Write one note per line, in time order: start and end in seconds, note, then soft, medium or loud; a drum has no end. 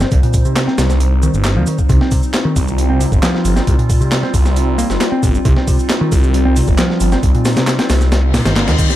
0.00 8.96 G3 medium
0.00 8.96 C4 medium
0.00 0.06 C4 medium
0.00 8.96 D#4 medium
0.00 1.88 C5 medium
0.00 snare medium
0.00 shaker soft
0.11 0.19 C2 loud
0.11 kick loud
0.11 closed hi-hat medium
0.11 shaker soft
0.23 0.44 A#2 medium
0.23 closed hi-hat soft
0.33 kick medium
0.33 closed hi-hat medium
0.33 shaker medium
0.45 0.66 C3 medium
0.45 shaker soft
0.56 snare loud
0.56 clap loud
0.56 closed hi-hat medium
0.56 shaker soft
0.67 0.76 C4 medium
0.67 snare soft
0.78 1.28 C2 loud
0.78 snare loud
0.78 closed hi-hat medium
0.78 shaker medium
0.90 snare soft
0.90 shaker soft
1.00 closed hi-hat medium
1.00 shaker soft
1.23 1.32 D#3 medium
1.23 shaker medium
1.34 1.58 G1 medium
1.34 shaker soft
1.45 snare loud
1.45 clap loud
1.45 closed hi-hat medium
1.45 shaker soft
1.56 1.64 D#2 loud
1.56 1.67 F3 medium
1.67 1.76 D#3 medium
1.67 closed hi-hat medium
1.67 shaker medium
1.78 kick loud
1.78 shaker soft
1.89 1.97 C2 loud
1.89 2.00 C3 loud
1.89 8.96 F4 medium
1.89 kick loud
1.89 closed hi-hat medium
1.89 shaker soft
2.01 2.11 C4 medium
2.01 snare soft
2.11 2.21 C3 medium
2.11 kick medium
2.11 closed hi-hat medium
2.11 open hi-hat medium
2.11 shaker medium
2.23 shaker soft
2.34 snare loud
2.34 clap loud
2.34 closed hi-hat medium
2.34 shaker soft
2.45 2.54 D#3 loud
2.56 3.06 C2 loud
2.56 kick loud
2.56 closed hi-hat medium
2.56 open hi-hat medium
2.56 shaker medium
2.68 shaker soft
2.78 closed hi-hat medium
2.78 shaker soft
2.90 2.99 C4 medium
3.00 3.11 C3 medium
3.00 closed hi-hat medium
3.00 open hi-hat medium
3.00 shaker medium
3.12 3.19 G1 medium
3.12 kick loud
3.12 shaker soft
3.22 3.55 F3 medium
3.22 snare loud
3.22 clap loud
3.22 closed hi-hat medium
3.22 shaker soft
3.35 snare soft
3.45 3.60 G1 loud
3.45 closed hi-hat medium
3.45 open hi-hat medium
3.45 shaker medium
3.56 3.61 C4 medium
3.56 snare medium
3.56 shaker soft
3.67 3.75 C2 medium
3.67 kick loud
3.67 closed hi-hat medium
3.67 shaker soft
3.78 4.00 A#2 medium
3.78 closed hi-hat soft
3.90 kick medium
3.90 closed hi-hat medium
3.90 open hi-hat medium
3.90 shaker medium
4.01 4.22 C3 medium
4.01 shaker soft
4.12 snare loud
4.12 clap loud
4.12 closed hi-hat medium
4.12 shaker soft
4.23 4.32 C4 medium
4.23 snare soft
4.34 4.84 C2 medium
4.34 kick loud
4.34 closed hi-hat medium
4.34 open hi-hat medium
4.34 shaker medium
4.46 snare soft
4.46 shaker soft
4.56 closed hi-hat medium
4.56 shaker soft
4.78 4.87 A#3 medium
4.78 closed hi-hat medium
4.78 open hi-hat medium
4.78 shaker medium
4.90 4.97 G1 loud
4.90 snare medium
4.90 shaker soft
5.01 snare loud
5.01 clap loud
5.01 closed hi-hat medium
5.01 shaker soft
5.12 5.21 C4 medium
5.23 5.38 G1 loud
5.23 5.28 A#2 medium
5.23 kick medium
5.23 closed hi-hat medium
5.23 open hi-hat medium
5.23 shaker medium
5.35 shaker soft
5.45 5.53 C2 loud
5.45 5.55 C3 loud
5.45 kick loud
5.45 closed hi-hat medium
5.45 shaker soft
5.56 5.66 C4 medium
5.56 snare soft
5.67 5.77 C3 medium
5.67 kick medium
5.67 closed hi-hat medium
5.67 open hi-hat medium
5.67 shaker medium
5.79 shaker soft
5.90 snare loud
5.90 clap loud
5.90 closed hi-hat medium
5.90 shaker soft
6.01 6.10 D#3 loud
6.12 6.62 C2 medium
6.12 kick loud
6.12 closed hi-hat medium
6.12 open hi-hat medium
6.12 shaker medium
6.23 shaker soft
6.34 closed hi-hat medium
6.34 shaker soft
6.45 6.55 C4 medium
6.56 6.67 C3 medium
6.56 closed hi-hat medium
6.56 open hi-hat medium
6.56 shaker medium
6.67 6.75 G1 loud
6.67 kick loud
6.67 shaker soft
6.78 7.11 F3 medium
6.78 snare loud
6.78 clap loud
6.78 closed hi-hat medium
6.78 shaker soft
6.90 snare soft
7.00 7.16 G1 loud
7.00 closed hi-hat medium
7.00 open hi-hat medium
7.00 shaker medium
7.12 7.17 C4 medium
7.12 snare medium
7.12 shaker soft
7.23 7.31 C2 loud
7.23 kick loud
7.23 closed hi-hat medium
7.23 shaker soft
7.34 7.55 A#2 medium
7.34 closed hi-hat soft
7.45 snare loud
7.45 closed hi-hat medium
7.45 open hi-hat medium
7.45 shaker medium
7.56 7.77 C3 medium
7.56 snare loud
7.56 closed hi-hat medium
7.56 shaker soft
7.67 snare loud
7.67 clap loud
7.67 closed hi-hat medium
7.67 shaker soft
7.79 7.87 C4 medium
7.79 snare loud
7.79 closed hi-hat medium
7.90 8.40 C2 loud
7.90 snare loud
7.90 closed hi-hat medium
7.90 open hi-hat medium
7.90 shaker medium
8.01 snare soft
8.01 shaker soft
8.12 snare loud
8.12 closed hi-hat medium
8.12 reverse cymbal medium
8.12 shaker soft
8.34 8.45 A#2 medium
8.34 snare loud
8.34 closed hi-hat medium
8.34 open hi-hat medium
8.34 shaker medium
8.45 8.69 G1 medium
8.45 8.54 D#3 loud
8.45 snare loud
8.45 closed hi-hat medium
8.45 shaker soft
8.56 8.65 A#3 medium
8.56 snare loud
8.56 clap loud
8.56 closed hi-hat medium
8.56 shaker soft
8.67 8.75 D#2 loud
8.67 8.76 D#3 medium
8.67 snare loud
8.67 closed hi-hat medium
8.78 8.89 D#3 medium
8.78 kick loud
8.78 closed hi-hat medium
8.78 open hi-hat medium
8.78 shaker medium
8.90 snare soft
8.90 shaker soft